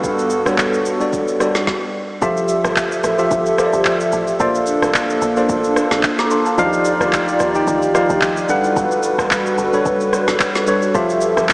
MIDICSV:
0, 0, Header, 1, 5, 480
1, 0, Start_track
1, 0, Key_signature, -1, "major"
1, 0, Tempo, 545455
1, 32, Time_signature, 4, 2, 24, 8
1, 10149, End_track
2, 0, Start_track
2, 0, Title_t, "Tine electric piano"
2, 0, Program_c, 0, 4
2, 0, Control_c, 0, 64, 127
2, 0, Note_on_c, 0, 55, 89
2, 0, Note_on_c, 0, 62, 83
2, 0, Note_on_c, 0, 66, 78
2, 0, Note_on_c, 0, 69, 79
2, 0, Note_on_c, 0, 71, 103
2, 271, Note_off_c, 0, 55, 0
2, 272, Note_off_c, 0, 62, 0
2, 274, Note_off_c, 0, 66, 0
2, 275, Note_off_c, 0, 69, 0
2, 305, Note_off_c, 0, 71, 0
2, 402, Note_on_c, 0, 55, 80
2, 405, Note_on_c, 0, 62, 76
2, 408, Note_on_c, 0, 66, 74
2, 412, Note_on_c, 0, 69, 78
2, 414, Note_on_c, 0, 73, 90
2, 777, Note_off_c, 0, 55, 0
2, 779, Note_off_c, 0, 62, 0
2, 780, Note_off_c, 0, 66, 0
2, 782, Note_off_c, 0, 69, 0
2, 783, Note_off_c, 0, 73, 0
2, 881, Note_on_c, 0, 55, 85
2, 884, Note_on_c, 0, 62, 77
2, 886, Note_on_c, 0, 66, 80
2, 890, Note_on_c, 0, 69, 77
2, 892, Note_on_c, 0, 74, 94
2, 1166, Note_off_c, 0, 55, 0
2, 1167, Note_off_c, 0, 62, 0
2, 1168, Note_off_c, 0, 66, 0
2, 1170, Note_off_c, 0, 69, 0
2, 1171, Note_off_c, 0, 74, 0
2, 1230, Note_on_c, 0, 55, 86
2, 1232, Note_on_c, 0, 62, 76
2, 1236, Note_on_c, 0, 66, 77
2, 1238, Note_on_c, 0, 69, 80
2, 1242, Note_on_c, 0, 74, 91
2, 1471, Note_off_c, 0, 55, 0
2, 1472, Note_off_c, 0, 62, 0
2, 1474, Note_off_c, 0, 66, 0
2, 1475, Note_off_c, 0, 69, 0
2, 1477, Note_off_c, 0, 74, 0
2, 1482, Control_c, 0, 64, 0
2, 1949, Note_on_c, 0, 53, 108
2, 1953, Note_on_c, 0, 65, 97
2, 1955, Note_on_c, 0, 67, 100
2, 1958, Note_on_c, 0, 69, 105
2, 1961, Note_on_c, 0, 76, 127
2, 2120, Control_c, 0, 64, 127
2, 2627, Note_off_c, 0, 53, 0
2, 2629, Note_off_c, 0, 65, 0
2, 2630, Note_off_c, 0, 67, 0
2, 2632, Note_off_c, 0, 69, 0
2, 2634, Note_off_c, 0, 76, 0
2, 2800, Note_on_c, 0, 53, 90
2, 2804, Note_on_c, 0, 65, 83
2, 2806, Note_on_c, 0, 67, 80
2, 2809, Note_on_c, 0, 69, 80
2, 2811, Note_on_c, 0, 76, 99
2, 3085, Note_off_c, 0, 53, 0
2, 3087, Note_off_c, 0, 65, 0
2, 3088, Note_off_c, 0, 67, 0
2, 3090, Note_off_c, 0, 69, 0
2, 3091, Note_off_c, 0, 76, 0
2, 3148, Note_on_c, 0, 53, 84
2, 3151, Note_on_c, 0, 65, 80
2, 3154, Note_on_c, 0, 67, 81
2, 3157, Note_on_c, 0, 69, 81
2, 3160, Note_on_c, 0, 72, 76
2, 3217, Note_on_c, 0, 74, 94
2, 3219, Note_off_c, 0, 72, 0
2, 3735, Note_off_c, 0, 53, 0
2, 3737, Note_off_c, 0, 65, 0
2, 3739, Note_off_c, 0, 67, 0
2, 3740, Note_off_c, 0, 69, 0
2, 3770, Note_off_c, 0, 74, 0
2, 3869, Note_on_c, 0, 58, 110
2, 3872, Note_on_c, 0, 65, 97
2, 3875, Note_on_c, 0, 69, 104
2, 3877, Note_on_c, 0, 72, 101
2, 3882, Control_c, 0, 64, 0
2, 3882, Note_on_c, 0, 74, 123
2, 4063, Control_c, 0, 64, 127
2, 4547, Note_off_c, 0, 58, 0
2, 4549, Note_off_c, 0, 65, 0
2, 4550, Note_off_c, 0, 69, 0
2, 4552, Note_off_c, 0, 72, 0
2, 4554, Note_off_c, 0, 74, 0
2, 4722, Note_on_c, 0, 58, 87
2, 4725, Note_on_c, 0, 65, 77
2, 4728, Note_on_c, 0, 69, 80
2, 4731, Note_on_c, 0, 72, 80
2, 4734, Note_on_c, 0, 74, 100
2, 5390, Note_off_c, 0, 58, 0
2, 5392, Note_off_c, 0, 65, 0
2, 5393, Note_off_c, 0, 69, 0
2, 5395, Note_off_c, 0, 72, 0
2, 5396, Note_off_c, 0, 74, 0
2, 5447, Note_on_c, 0, 86, 69
2, 5453, Note_on_c, 0, 82, 61
2, 5548, Note_off_c, 0, 86, 0
2, 5551, Note_off_c, 0, 82, 0
2, 5554, Note_on_c, 0, 84, 76
2, 5559, Note_on_c, 0, 81, 60
2, 5677, Note_off_c, 0, 81, 0
2, 5679, Note_off_c, 0, 84, 0
2, 5688, Note_on_c, 0, 81, 68
2, 5693, Note_on_c, 0, 77, 60
2, 5788, Note_on_c, 0, 53, 118
2, 5790, Note_off_c, 0, 77, 0
2, 5791, Note_on_c, 0, 63, 105
2, 5794, Note_on_c, 0, 65, 80
2, 5797, Note_on_c, 0, 74, 100
2, 5801, Note_on_c, 0, 77, 126
2, 5803, Control_c, 0, 64, 0
2, 5852, Note_on_c, 0, 67, 98
2, 5856, Note_off_c, 0, 65, 0
2, 5914, Note_off_c, 0, 81, 0
2, 5980, Control_c, 0, 64, 127
2, 6467, Note_off_c, 0, 53, 0
2, 6469, Note_off_c, 0, 63, 0
2, 6471, Note_off_c, 0, 74, 0
2, 6473, Note_off_c, 0, 77, 0
2, 6499, Note_off_c, 0, 67, 0
2, 6641, Note_on_c, 0, 51, 88
2, 6643, Note_on_c, 0, 63, 84
2, 6646, Note_on_c, 0, 67, 81
2, 6649, Note_on_c, 0, 74, 81
2, 6652, Note_on_c, 0, 79, 94
2, 6926, Note_off_c, 0, 51, 0
2, 6927, Note_off_c, 0, 63, 0
2, 6928, Note_off_c, 0, 67, 0
2, 6930, Note_off_c, 0, 74, 0
2, 6931, Note_off_c, 0, 79, 0
2, 6988, Note_on_c, 0, 53, 89
2, 6991, Note_on_c, 0, 63, 81
2, 6994, Note_on_c, 0, 67, 82
2, 6997, Note_on_c, 0, 74, 82
2, 7000, Note_on_c, 0, 77, 99
2, 7470, Note_off_c, 0, 53, 0
2, 7470, Note_on_c, 0, 55, 88
2, 7471, Note_off_c, 0, 63, 0
2, 7471, Note_on_c, 0, 62, 85
2, 7473, Note_off_c, 0, 67, 0
2, 7475, Note_off_c, 0, 74, 0
2, 7475, Note_on_c, 0, 69, 88
2, 7476, Note_off_c, 0, 77, 0
2, 7478, Note_on_c, 0, 71, 83
2, 7482, Note_on_c, 0, 78, 105
2, 7484, Control_c, 0, 64, 0
2, 7615, Control_c, 0, 64, 127
2, 8244, Note_off_c, 0, 55, 0
2, 8245, Note_off_c, 0, 62, 0
2, 8246, Note_off_c, 0, 69, 0
2, 8248, Note_off_c, 0, 71, 0
2, 8250, Note_off_c, 0, 78, 0
2, 8562, Note_on_c, 0, 55, 88
2, 8565, Note_on_c, 0, 62, 79
2, 8568, Note_on_c, 0, 69, 84
2, 8570, Note_on_c, 0, 71, 80
2, 8574, Note_on_c, 0, 73, 98
2, 9230, Note_off_c, 0, 55, 0
2, 9232, Note_off_c, 0, 62, 0
2, 9233, Note_off_c, 0, 69, 0
2, 9234, Note_off_c, 0, 71, 0
2, 9236, Note_off_c, 0, 73, 0
2, 9390, Note_on_c, 0, 55, 85
2, 9392, Note_on_c, 0, 62, 80
2, 9396, Note_on_c, 0, 69, 80
2, 9399, Note_on_c, 0, 71, 81
2, 9402, Note_on_c, 0, 73, 96
2, 9588, Note_off_c, 0, 55, 0
2, 9589, Note_off_c, 0, 62, 0
2, 9591, Note_off_c, 0, 69, 0
2, 9592, Note_off_c, 0, 71, 0
2, 9594, Note_off_c, 0, 73, 0
2, 9629, Note_on_c, 0, 53, 115
2, 9632, Note_on_c, 0, 65, 103
2, 9634, Note_on_c, 0, 67, 98
2, 9637, Note_on_c, 0, 69, 99
2, 9641, Note_on_c, 0, 76, 117
2, 9642, Control_c, 0, 64, 0
2, 9774, Control_c, 0, 64, 127
2, 10149, Note_off_c, 0, 53, 0
2, 10149, Note_off_c, 0, 65, 0
2, 10149, Note_off_c, 0, 67, 0
2, 10149, Note_off_c, 0, 69, 0
2, 10149, Note_off_c, 0, 76, 0
2, 10149, End_track
3, 0, Start_track
3, 0, Title_t, "Analog synth pad"
3, 0, Program_c, 1, 89
3, 0, Note_on_c, 1, 43, 75
3, 0, Note_on_c, 1, 59, 71
3, 0, Note_on_c, 1, 66, 74
3, 0, Note_on_c, 1, 69, 88
3, 1456, Note_off_c, 1, 59, 0
3, 1456, Note_off_c, 1, 66, 0
3, 1456, Note_off_c, 1, 69, 0
3, 1457, Note_off_c, 1, 43, 0
3, 1951, Note_on_c, 1, 76, 74
3, 1952, Note_on_c, 1, 53, 78
3, 1952, Note_on_c, 1, 67, 70
3, 1952, Note_on_c, 1, 69, 86
3, 3852, Note_off_c, 1, 76, 0
3, 3853, Note_off_c, 1, 53, 0
3, 3853, Note_off_c, 1, 67, 0
3, 3853, Note_off_c, 1, 69, 0
3, 3871, Note_on_c, 1, 69, 81
3, 3872, Note_on_c, 1, 58, 75
3, 3873, Note_on_c, 1, 62, 87
3, 5772, Note_off_c, 1, 69, 0
3, 5773, Note_off_c, 1, 58, 0
3, 5773, Note_off_c, 1, 62, 0
3, 5791, Note_on_c, 1, 63, 76
3, 5791, Note_on_c, 1, 74, 73
3, 5792, Note_on_c, 1, 65, 72
3, 5792, Note_on_c, 1, 67, 91
3, 7454, Note_off_c, 1, 63, 0
3, 7455, Note_off_c, 1, 65, 0
3, 7455, Note_off_c, 1, 67, 0
3, 7455, Note_off_c, 1, 74, 0
3, 7470, Note_on_c, 1, 66, 76
3, 7470, Note_on_c, 1, 69, 76
3, 7470, Note_on_c, 1, 71, 92
3, 7472, Note_on_c, 1, 55, 80
3, 9609, Note_off_c, 1, 71, 0
3, 9610, Note_off_c, 1, 55, 0
3, 9610, Note_off_c, 1, 66, 0
3, 9610, Note_off_c, 1, 69, 0
3, 9635, Note_on_c, 1, 53, 80
3, 9635, Note_on_c, 1, 67, 75
3, 9635, Note_on_c, 1, 69, 91
3, 9636, Note_on_c, 1, 76, 72
3, 10149, Note_off_c, 1, 53, 0
3, 10149, Note_off_c, 1, 67, 0
3, 10149, Note_off_c, 1, 69, 0
3, 10149, Note_off_c, 1, 76, 0
3, 10149, End_track
4, 0, Start_track
4, 0, Title_t, "Log drum bass"
4, 0, Program_c, 2, 39
4, 1953, Note_on_c, 2, 29, 110
4, 2286, Note_off_c, 2, 29, 0
4, 2325, Note_on_c, 2, 31, 100
4, 2637, Note_off_c, 2, 31, 0
4, 2672, Note_on_c, 2, 33, 92
4, 2887, Note_off_c, 2, 33, 0
4, 2913, Note_on_c, 2, 31, 101
4, 3246, Note_off_c, 2, 31, 0
4, 3283, Note_on_c, 2, 31, 93
4, 3596, Note_off_c, 2, 31, 0
4, 3633, Note_on_c, 2, 33, 92
4, 3848, Note_off_c, 2, 33, 0
4, 3872, Note_on_c, 2, 34, 116
4, 4206, Note_off_c, 2, 34, 0
4, 4245, Note_on_c, 2, 36, 86
4, 4557, Note_off_c, 2, 36, 0
4, 4591, Note_on_c, 2, 34, 97
4, 4807, Note_off_c, 2, 34, 0
4, 4832, Note_on_c, 2, 33, 103
4, 5166, Note_off_c, 2, 33, 0
4, 5204, Note_on_c, 2, 33, 94
4, 5301, Note_off_c, 2, 33, 0
4, 5792, Note_on_c, 2, 39, 110
4, 6126, Note_off_c, 2, 39, 0
4, 6163, Note_on_c, 2, 38, 87
4, 6476, Note_off_c, 2, 38, 0
4, 6512, Note_on_c, 2, 39, 92
4, 6728, Note_off_c, 2, 39, 0
4, 6753, Note_on_c, 2, 38, 97
4, 7086, Note_off_c, 2, 38, 0
4, 7125, Note_on_c, 2, 38, 97
4, 7436, Note_off_c, 2, 38, 0
4, 7472, Note_on_c, 2, 31, 92
4, 7687, Note_off_c, 2, 31, 0
4, 7713, Note_on_c, 2, 31, 115
4, 8046, Note_off_c, 2, 31, 0
4, 8082, Note_on_c, 2, 33, 88
4, 8395, Note_off_c, 2, 33, 0
4, 8431, Note_on_c, 2, 31, 93
4, 8647, Note_off_c, 2, 31, 0
4, 8673, Note_on_c, 2, 30, 100
4, 9006, Note_off_c, 2, 30, 0
4, 9043, Note_on_c, 2, 30, 100
4, 9140, Note_off_c, 2, 30, 0
4, 9633, Note_on_c, 2, 29, 106
4, 9966, Note_off_c, 2, 29, 0
4, 10003, Note_on_c, 2, 31, 96
4, 10149, Note_off_c, 2, 31, 0
4, 10149, End_track
5, 0, Start_track
5, 0, Title_t, "Drums"
5, 33, Note_on_c, 9, 36, 118
5, 35, Note_on_c, 9, 82, 80
5, 121, Note_off_c, 9, 36, 0
5, 123, Note_off_c, 9, 82, 0
5, 166, Note_on_c, 9, 82, 55
5, 254, Note_off_c, 9, 82, 0
5, 265, Note_on_c, 9, 82, 99
5, 353, Note_off_c, 9, 82, 0
5, 402, Note_on_c, 9, 36, 87
5, 407, Note_on_c, 9, 37, 101
5, 411, Note_on_c, 9, 82, 51
5, 490, Note_off_c, 9, 36, 0
5, 495, Note_off_c, 9, 37, 0
5, 499, Note_off_c, 9, 82, 0
5, 513, Note_on_c, 9, 39, 85
5, 514, Note_on_c, 9, 36, 83
5, 517, Note_on_c, 9, 82, 76
5, 601, Note_off_c, 9, 39, 0
5, 602, Note_off_c, 9, 36, 0
5, 605, Note_off_c, 9, 82, 0
5, 650, Note_on_c, 9, 82, 50
5, 738, Note_off_c, 9, 82, 0
5, 753, Note_on_c, 9, 82, 89
5, 841, Note_off_c, 9, 82, 0
5, 885, Note_on_c, 9, 82, 52
5, 973, Note_off_c, 9, 82, 0
5, 994, Note_on_c, 9, 36, 114
5, 994, Note_on_c, 9, 82, 85
5, 1082, Note_off_c, 9, 36, 0
5, 1082, Note_off_c, 9, 82, 0
5, 1126, Note_on_c, 9, 82, 52
5, 1214, Note_off_c, 9, 82, 0
5, 1235, Note_on_c, 9, 37, 92
5, 1239, Note_on_c, 9, 82, 79
5, 1323, Note_off_c, 9, 37, 0
5, 1327, Note_off_c, 9, 82, 0
5, 1364, Note_on_c, 9, 38, 69
5, 1365, Note_on_c, 9, 82, 55
5, 1452, Note_off_c, 9, 38, 0
5, 1453, Note_off_c, 9, 82, 0
5, 1472, Note_on_c, 9, 36, 106
5, 1472, Note_on_c, 9, 38, 84
5, 1560, Note_off_c, 9, 36, 0
5, 1560, Note_off_c, 9, 38, 0
5, 1953, Note_on_c, 9, 36, 127
5, 1953, Note_on_c, 9, 82, 81
5, 2041, Note_off_c, 9, 36, 0
5, 2041, Note_off_c, 9, 82, 0
5, 2086, Note_on_c, 9, 82, 57
5, 2174, Note_off_c, 9, 82, 0
5, 2186, Note_on_c, 9, 82, 100
5, 2274, Note_off_c, 9, 82, 0
5, 2328, Note_on_c, 9, 37, 101
5, 2332, Note_on_c, 9, 82, 54
5, 2416, Note_off_c, 9, 37, 0
5, 2420, Note_off_c, 9, 82, 0
5, 2432, Note_on_c, 9, 39, 90
5, 2434, Note_on_c, 9, 36, 87
5, 2437, Note_on_c, 9, 82, 81
5, 2520, Note_off_c, 9, 39, 0
5, 2522, Note_off_c, 9, 36, 0
5, 2525, Note_off_c, 9, 82, 0
5, 2568, Note_on_c, 9, 82, 53
5, 2656, Note_off_c, 9, 82, 0
5, 2672, Note_on_c, 9, 82, 93
5, 2674, Note_on_c, 9, 37, 91
5, 2760, Note_off_c, 9, 82, 0
5, 2762, Note_off_c, 9, 37, 0
5, 2804, Note_on_c, 9, 82, 52
5, 2892, Note_off_c, 9, 82, 0
5, 2913, Note_on_c, 9, 36, 123
5, 2913, Note_on_c, 9, 82, 90
5, 3001, Note_off_c, 9, 36, 0
5, 3001, Note_off_c, 9, 82, 0
5, 3045, Note_on_c, 9, 82, 53
5, 3133, Note_off_c, 9, 82, 0
5, 3153, Note_on_c, 9, 37, 96
5, 3157, Note_on_c, 9, 82, 81
5, 3241, Note_off_c, 9, 37, 0
5, 3245, Note_off_c, 9, 82, 0
5, 3284, Note_on_c, 9, 82, 53
5, 3372, Note_off_c, 9, 82, 0
5, 3388, Note_on_c, 9, 39, 91
5, 3391, Note_on_c, 9, 36, 88
5, 3393, Note_on_c, 9, 82, 64
5, 3476, Note_off_c, 9, 39, 0
5, 3479, Note_off_c, 9, 36, 0
5, 3481, Note_off_c, 9, 82, 0
5, 3523, Note_on_c, 9, 82, 60
5, 3611, Note_off_c, 9, 82, 0
5, 3628, Note_on_c, 9, 82, 77
5, 3716, Note_off_c, 9, 82, 0
5, 3762, Note_on_c, 9, 82, 57
5, 3850, Note_off_c, 9, 82, 0
5, 3872, Note_on_c, 9, 36, 126
5, 3872, Note_on_c, 9, 82, 76
5, 3960, Note_off_c, 9, 36, 0
5, 3960, Note_off_c, 9, 82, 0
5, 4004, Note_on_c, 9, 82, 58
5, 4092, Note_off_c, 9, 82, 0
5, 4104, Note_on_c, 9, 82, 104
5, 4192, Note_off_c, 9, 82, 0
5, 4245, Note_on_c, 9, 37, 99
5, 4249, Note_on_c, 9, 82, 55
5, 4333, Note_off_c, 9, 37, 0
5, 4337, Note_off_c, 9, 82, 0
5, 4351, Note_on_c, 9, 39, 91
5, 4353, Note_on_c, 9, 36, 86
5, 4355, Note_on_c, 9, 82, 81
5, 4439, Note_off_c, 9, 39, 0
5, 4441, Note_off_c, 9, 36, 0
5, 4443, Note_off_c, 9, 82, 0
5, 4488, Note_on_c, 9, 82, 53
5, 4576, Note_off_c, 9, 82, 0
5, 4591, Note_on_c, 9, 82, 89
5, 4679, Note_off_c, 9, 82, 0
5, 4724, Note_on_c, 9, 82, 53
5, 4812, Note_off_c, 9, 82, 0
5, 4832, Note_on_c, 9, 82, 91
5, 4833, Note_on_c, 9, 36, 126
5, 4920, Note_off_c, 9, 82, 0
5, 4921, Note_off_c, 9, 36, 0
5, 4964, Note_on_c, 9, 82, 55
5, 5052, Note_off_c, 9, 82, 0
5, 5072, Note_on_c, 9, 37, 100
5, 5076, Note_on_c, 9, 82, 87
5, 5160, Note_off_c, 9, 37, 0
5, 5164, Note_off_c, 9, 82, 0
5, 5203, Note_on_c, 9, 38, 71
5, 5204, Note_on_c, 9, 82, 55
5, 5291, Note_off_c, 9, 38, 0
5, 5292, Note_off_c, 9, 82, 0
5, 5308, Note_on_c, 9, 39, 92
5, 5311, Note_on_c, 9, 36, 91
5, 5313, Note_on_c, 9, 82, 63
5, 5396, Note_off_c, 9, 39, 0
5, 5399, Note_off_c, 9, 36, 0
5, 5401, Note_off_c, 9, 82, 0
5, 5443, Note_on_c, 9, 82, 61
5, 5447, Note_on_c, 9, 38, 76
5, 5531, Note_off_c, 9, 82, 0
5, 5535, Note_off_c, 9, 38, 0
5, 5549, Note_on_c, 9, 82, 81
5, 5637, Note_off_c, 9, 82, 0
5, 5683, Note_on_c, 9, 82, 58
5, 5771, Note_off_c, 9, 82, 0
5, 5792, Note_on_c, 9, 36, 127
5, 5792, Note_on_c, 9, 82, 83
5, 5880, Note_off_c, 9, 36, 0
5, 5880, Note_off_c, 9, 82, 0
5, 5924, Note_on_c, 9, 82, 59
5, 6012, Note_off_c, 9, 82, 0
5, 6026, Note_on_c, 9, 82, 100
5, 6114, Note_off_c, 9, 82, 0
5, 6167, Note_on_c, 9, 37, 100
5, 6171, Note_on_c, 9, 82, 56
5, 6255, Note_off_c, 9, 37, 0
5, 6259, Note_off_c, 9, 82, 0
5, 6273, Note_on_c, 9, 39, 86
5, 6274, Note_on_c, 9, 36, 85
5, 6277, Note_on_c, 9, 82, 79
5, 6361, Note_off_c, 9, 39, 0
5, 6362, Note_off_c, 9, 36, 0
5, 6365, Note_off_c, 9, 82, 0
5, 6408, Note_on_c, 9, 82, 56
5, 6496, Note_off_c, 9, 82, 0
5, 6511, Note_on_c, 9, 82, 94
5, 6513, Note_on_c, 9, 37, 94
5, 6599, Note_off_c, 9, 82, 0
5, 6601, Note_off_c, 9, 37, 0
5, 6644, Note_on_c, 9, 82, 52
5, 6732, Note_off_c, 9, 82, 0
5, 6753, Note_on_c, 9, 36, 123
5, 6753, Note_on_c, 9, 82, 92
5, 6841, Note_off_c, 9, 36, 0
5, 6841, Note_off_c, 9, 82, 0
5, 6885, Note_on_c, 9, 82, 57
5, 6973, Note_off_c, 9, 82, 0
5, 6994, Note_on_c, 9, 37, 97
5, 6998, Note_on_c, 9, 82, 82
5, 7082, Note_off_c, 9, 37, 0
5, 7086, Note_off_c, 9, 82, 0
5, 7125, Note_on_c, 9, 82, 59
5, 7213, Note_off_c, 9, 82, 0
5, 7229, Note_on_c, 9, 39, 94
5, 7232, Note_on_c, 9, 36, 87
5, 7234, Note_on_c, 9, 82, 63
5, 7317, Note_off_c, 9, 39, 0
5, 7320, Note_off_c, 9, 36, 0
5, 7322, Note_off_c, 9, 82, 0
5, 7365, Note_on_c, 9, 82, 59
5, 7453, Note_off_c, 9, 82, 0
5, 7470, Note_on_c, 9, 82, 81
5, 7558, Note_off_c, 9, 82, 0
5, 7603, Note_on_c, 9, 82, 55
5, 7691, Note_off_c, 9, 82, 0
5, 7713, Note_on_c, 9, 36, 123
5, 7714, Note_on_c, 9, 82, 79
5, 7801, Note_off_c, 9, 36, 0
5, 7802, Note_off_c, 9, 82, 0
5, 7845, Note_on_c, 9, 82, 59
5, 7933, Note_off_c, 9, 82, 0
5, 7946, Note_on_c, 9, 82, 107
5, 8034, Note_off_c, 9, 82, 0
5, 8081, Note_on_c, 9, 36, 99
5, 8086, Note_on_c, 9, 37, 103
5, 8090, Note_on_c, 9, 82, 55
5, 8169, Note_off_c, 9, 36, 0
5, 8174, Note_off_c, 9, 37, 0
5, 8178, Note_off_c, 9, 82, 0
5, 8192, Note_on_c, 9, 39, 88
5, 8194, Note_on_c, 9, 36, 86
5, 8197, Note_on_c, 9, 82, 84
5, 8280, Note_off_c, 9, 39, 0
5, 8282, Note_off_c, 9, 36, 0
5, 8285, Note_off_c, 9, 82, 0
5, 8328, Note_on_c, 9, 82, 52
5, 8416, Note_off_c, 9, 82, 0
5, 8431, Note_on_c, 9, 82, 88
5, 8519, Note_off_c, 9, 82, 0
5, 8565, Note_on_c, 9, 82, 53
5, 8653, Note_off_c, 9, 82, 0
5, 8673, Note_on_c, 9, 36, 120
5, 8673, Note_on_c, 9, 82, 91
5, 8761, Note_off_c, 9, 36, 0
5, 8761, Note_off_c, 9, 82, 0
5, 8805, Note_on_c, 9, 82, 54
5, 8893, Note_off_c, 9, 82, 0
5, 8914, Note_on_c, 9, 37, 92
5, 8918, Note_on_c, 9, 82, 87
5, 9002, Note_off_c, 9, 37, 0
5, 9006, Note_off_c, 9, 82, 0
5, 9045, Note_on_c, 9, 38, 70
5, 9046, Note_on_c, 9, 82, 58
5, 9133, Note_off_c, 9, 38, 0
5, 9134, Note_off_c, 9, 82, 0
5, 9149, Note_on_c, 9, 39, 91
5, 9152, Note_on_c, 9, 36, 88
5, 9154, Note_on_c, 9, 82, 64
5, 9237, Note_off_c, 9, 39, 0
5, 9240, Note_off_c, 9, 36, 0
5, 9242, Note_off_c, 9, 82, 0
5, 9285, Note_on_c, 9, 82, 60
5, 9288, Note_on_c, 9, 38, 74
5, 9373, Note_off_c, 9, 82, 0
5, 9376, Note_off_c, 9, 38, 0
5, 9390, Note_on_c, 9, 82, 82
5, 9478, Note_off_c, 9, 82, 0
5, 9524, Note_on_c, 9, 82, 56
5, 9612, Note_off_c, 9, 82, 0
5, 9633, Note_on_c, 9, 36, 126
5, 9633, Note_on_c, 9, 82, 75
5, 9721, Note_off_c, 9, 36, 0
5, 9721, Note_off_c, 9, 82, 0
5, 9765, Note_on_c, 9, 82, 57
5, 9853, Note_off_c, 9, 82, 0
5, 9865, Note_on_c, 9, 82, 101
5, 9953, Note_off_c, 9, 82, 0
5, 10007, Note_on_c, 9, 37, 97
5, 10011, Note_on_c, 9, 82, 56
5, 10095, Note_off_c, 9, 37, 0
5, 10099, Note_off_c, 9, 82, 0
5, 10111, Note_on_c, 9, 39, 94
5, 10113, Note_on_c, 9, 36, 83
5, 10116, Note_on_c, 9, 82, 81
5, 10149, Note_off_c, 9, 36, 0
5, 10149, Note_off_c, 9, 39, 0
5, 10149, Note_off_c, 9, 82, 0
5, 10149, End_track
0, 0, End_of_file